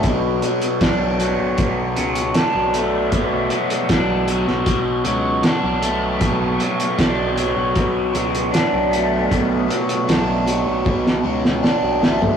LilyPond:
<<
  \new Staff \with { instrumentName = "Overdriven electric guitar" } { \clef bass \time 4/4 \key d \major \tempo 4 = 78 b,8 fis8 d'8 fis8 b,8 fis8 d'8 a8 | b,8 fis8 d'8 fis8 b,8 fis8 d'8 a8 | b,8 fis8 d'8 fis8 b,8 fis8 d'8 a8 | b,8 fis8 d'8 fis8 b,8 fis8 d'8 a8 | }
  \new Staff \with { instrumentName = "Harmonium" } { \clef bass \time 4/4 \key d \major <b, fis>1~ | <b, fis>1~ | <b, fis>1~ | <b, fis>1 | }
  \new Staff \with { instrumentName = "Picked electric bass" } { \clef bass \time 4/4 \key d \major b,,8 r8 b,,8. b,,8. cis,8 r16 b,,8. | b,,8 r8 b,,8. b,,8. cis,8 r16 b,,8. | b,,8 r8 b,,8. b,,8. cis,8 r16 b,,8. | b,,8 r8 b,,8. b,,8. cis,8 r16 b,,8. | }
  \new DrumStaff \with { instrumentName = "Drums" } \drummode { \time 4/4 <hh bd>8 hh16 hh16 <hh bd sn>8 hh8 <hh bd>8 hh16 hh16 <hh sn>8 hh8 | <hh bd>8 hh16 hh16 <hh bd sn>8 hh16 sn16 <hh bd>8 hh8 <hh sn>8 hh8 | <hh bd>8 hh16 hh16 <hh bd sn>8 hh8 <hh bd>8 hh16 hh16 <hh sn>8 hh8 | <hh bd>8 hh16 hh16 <hh sn>8 hh8 bd16 sn8 sn16 sn8 sn16 tomfh16 | }
>>